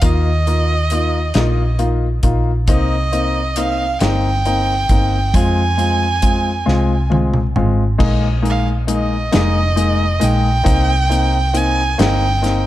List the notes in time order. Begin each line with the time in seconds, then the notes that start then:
0.02 D#2 A#3 D#4 F4 D#5, kick, closed hi-hat
0.47 A#3 D#4 F4, closed hi-hat
0.90 A#3 D#4 F4, closed hi-hat
1.34 A#1 A#3 D#4 F4, snare, closed hi-hat
1.79 A#3 D#4 F4, closed hi-hat
2.23 A#1 A#3 D#4 F4, kick, closed hi-hat
2.68 C2 A#3 C4 D#4 D#5, kick, closed hi-hat
3.12 A#3 C4 D#4, closed hi-hat
3.56 A#3 C4 D#4 F5, closed hi-hat
4.00 G1 A#3 C4 D#4 G5, snare, closed hi-hat
4.45 A#3 C4 D#4, closed hi-hat
4.89 G1 A#3 C4 D#4, kick, closed hi-hat
5.34 F2 G#3 C4 F4 G#5, kick, closed hi-hat
5.77 G#3 C4 F4, closed hi-hat
6.22 G#3 C4 F4, kick, closed hi-hat
6.66 C2 G#3 C4 F4, snare
7.10 G#3 C4 F4, high tom
7.34 mid tom
7.56 G#1 G#3 C4 F4, mid tom
7.98 A#1 G#3 A#3 D#4, kick, crash
8.42 G#3 A#3 D#4, closed hi-hat
8.50 F5
8.87 G#3 A#3 D#4, closed hi-hat
8.94 D#5
9.32 F1 G#3 A#3 D#4, snare, closed hi-hat
9.76 G#3 A#3 D#4, closed hi-hat
10.20 A#1 G#3 A#3 D#4 G5, closed hi-hat
10.64 C2 A#3 C4 D#4, kick, closed hi-hat
11.09 A#3 C4 D#4, closed hi-hat
11.54 A#3 C4 D#4 G#5, closed hi-hat
11.98 G1 A#3 C4 D#4 G5, snare, closed hi-hat
12.42 A#3 C4 D#4, snare, closed hi-hat